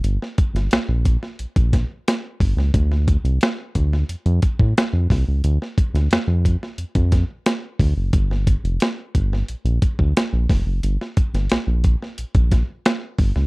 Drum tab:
HH |x-xxx-x-xxx-x-o-|x-xxx-x-xxx-x-o-|x-xxx-x-xxx-x-o-|x-xxx-x-xxx-x-o-|
SD |-o-oo--o--o-o--o|-o--o--o----o-o-|-o-oo--o--o-o---|-o--o--o----o-o-|
BD |--o---o--oo---o-|o-o---o---oo--o-|--o---o--oo---o-|o-o---o---oo--o-|

HH |x-xxx-x-xxx-x-o-|
SD |-o-oo--o--o-o--o|
BD |--o---o--oo---o-|